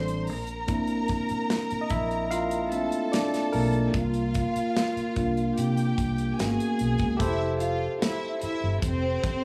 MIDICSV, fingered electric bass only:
0, 0, Header, 1, 3, 480
1, 0, Start_track
1, 0, Key_signature, -1, "major"
1, 0, Tempo, 814111
1, 403, Time_signature, 4, 2, 24, 8
1, 5566, End_track
2, 0, Start_track
2, 0, Title_t, "Fingered electric bass"
2, 0, Program_c, 0, 33
2, 0, Note_on_c, 0, 33, 83
2, 171, Note_off_c, 0, 33, 0
2, 171, Note_on_c, 0, 34, 75
2, 656, Note_off_c, 0, 34, 0
2, 1126, Note_on_c, 0, 34, 77
2, 1701, Note_off_c, 0, 34, 0
2, 2090, Note_on_c, 0, 35, 61
2, 2282, Note_off_c, 0, 35, 0
2, 2326, Note_on_c, 0, 36, 91
2, 2618, Note_off_c, 0, 36, 0
2, 3046, Note_on_c, 0, 36, 68
2, 3241, Note_off_c, 0, 36, 0
2, 3293, Note_on_c, 0, 48, 85
2, 3484, Note_off_c, 0, 48, 0
2, 3531, Note_on_c, 0, 36, 70
2, 3723, Note_off_c, 0, 36, 0
2, 3776, Note_on_c, 0, 32, 80
2, 3869, Note_off_c, 0, 32, 0
2, 4014, Note_on_c, 0, 35, 74
2, 4108, Note_off_c, 0, 35, 0
2, 4127, Note_on_c, 0, 37, 76
2, 4224, Note_off_c, 0, 37, 0
2, 4250, Note_on_c, 0, 29, 90
2, 4637, Note_off_c, 0, 29, 0
2, 5092, Note_on_c, 0, 31, 77
2, 5186, Note_off_c, 0, 31, 0
2, 5206, Note_on_c, 0, 29, 86
2, 5400, Note_off_c, 0, 29, 0
2, 5566, End_track
3, 0, Start_track
3, 0, Title_t, "Muted fingered electric bass strokes"
3, 771, Note_on_c, 9, 29, 44
3, 830, Note_off_c, 9, 29, 0
3, 1014, Note_on_c, 9, 29, 43
3, 1073, Note_off_c, 9, 29, 0
3, 2688, Note_on_c, 9, 29, 44
3, 2747, Note_off_c, 9, 29, 0
3, 2928, Note_on_c, 9, 29, 40
3, 2987, Note_off_c, 9, 29, 0
3, 4971, Note_on_c, 9, 29, 43
3, 5030, Note_off_c, 9, 29, 0
3, 5566, End_track
0, 0, End_of_file